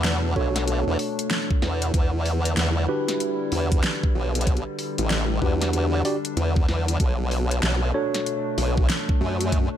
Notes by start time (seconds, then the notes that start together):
Already playing: E2 B2 A3 D4 F#4 A4 C#5
0.04 snare, closed hi-hat
0.36 B1 D4 F#4 A4 C#5, kick
0.56 snare, closed hi-hat
0.68 closed hi-hat
0.87 E2
0.99 open hi-hat
1.19 closed hi-hat
1.31 snare, closed hi-hat
1.51 kick
1.62 E2, snare
1.82 closed hi-hat
1.94 E2 D3 G3 E4, kick, closed hi-hat
2.26 open hi-hat
2.45 closed hi-hat
2.57 E2, snare, closed hi-hat
2.89 D4 F#4 G4 B4
3.08 snare, closed hi-hat
3.20 closed hi-hat
3.52 E2, open hi-hat
3.72 kick, closed hi-hat
3.84 snare, closed hi-hat
4.03 kick
4.15 B1
4.35 closed hi-hat
4.41 closed hi-hat
4.46 D4, kick, closed hi-hat
4.57 closed hi-hat
4.79 open hi-hat
4.98 A1, closed hi-hat
5.10 snare, closed hi-hat
5.42 E2 D4 F#4 G4 B4, kick
5.62 snare, closed hi-hat
5.73 closed hi-hat
6.05 D4 F#4 G4 D5, open hi-hat
6.25 closed hi-hat
6.37 E2, closed hi-hat
6.56 kick
6.68 E2, snare
6.88 closed hi-hat
7.00 B1 B2 A3, kick, closed hi-hat
7.31 open hi-hat
7.51 closed hi-hat
7.63 B1, snare, closed hi-hat
7.94 D4 F#4 A4 C#5
8.14 snare, closed hi-hat
8.26 closed hi-hat
8.58 B1, open hi-hat
8.77 kick
8.90 snare, closed hi-hat
9.09 kick
9.21 F#2
9.41 closed hi-hat
9.52 kick, closed hi-hat